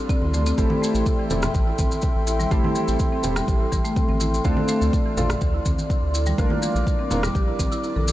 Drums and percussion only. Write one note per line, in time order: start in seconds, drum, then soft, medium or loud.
0.09 kick loud
0.09 maracas soft
0.22 high conga medium
0.34 high conga medium
0.34 maracas medium
0.46 maracas medium
0.58 kick loud
0.58 maracas soft
0.70 high conga loud
0.83 maracas medium
0.95 maracas soft
1.06 kick loud
1.06 maracas soft
1.30 high conga medium
1.30 low conga medium
1.30 maracas medium
1.42 cross-stick medium
1.42 low conga medium
1.42 maracas medium
1.54 kick loud
1.54 maracas soft
1.78 kick medium
1.78 high conga medium
1.78 maracas medium
1.91 high conga medium
1.91 maracas medium
2.02 kick loud
2.02 maracas soft
2.27 maracas medium
2.39 high conga medium
2.39 maracas soft
2.51 kick loud
2.51 maracas soft
2.64 high conga loud
2.75 maracas medium
2.88 maracas soft
2.99 kick loud
2.99 maracas soft
3.24 high conga medium
3.24 low conga medium
3.24 maracas medium
3.36 cross-stick medium
3.36 low conga medium
3.36 maracas medium
3.48 kick loud
3.48 maracas soft
3.72 kick medium
3.72 maracas medium
3.85 maracas soft
3.96 kick loud
3.96 maracas soft
4.09 high conga medium
4.20 high conga medium
4.20 maracas medium
4.34 maracas medium
4.45 kick loud
4.45 maracas soft
4.57 high conga loud
4.68 maracas medium
4.82 maracas soft
4.93 kick loud
4.93 maracas soft
5.17 high conga medium
5.17 low conga medium
5.17 maracas medium
5.29 cross-stick medium
5.29 low conga medium
5.29 maracas soft
5.41 kick loud
5.41 maracas soft
5.65 kick medium
5.65 high conga medium
5.65 maracas medium
5.78 high conga medium
5.78 maracas medium
5.90 kick loud
5.90 maracas soft
6.14 maracas medium
6.26 high conga medium
6.26 maracas soft
6.38 kick loud
6.38 maracas soft
6.50 high conga loud
6.62 maracas medium
6.76 maracas soft
6.87 kick loud
6.87 maracas soft
7.11 high conga medium
7.11 low conga loud
7.11 maracas medium
7.23 cross-stick medium
7.23 low conga medium
7.23 maracas medium
7.35 kick loud
7.35 maracas soft
7.59 kick medium
7.59 high conga medium
7.59 maracas loud
7.72 maracas medium
7.84 maracas soft
7.96 high conga medium
8.07 high conga medium
8.07 maracas medium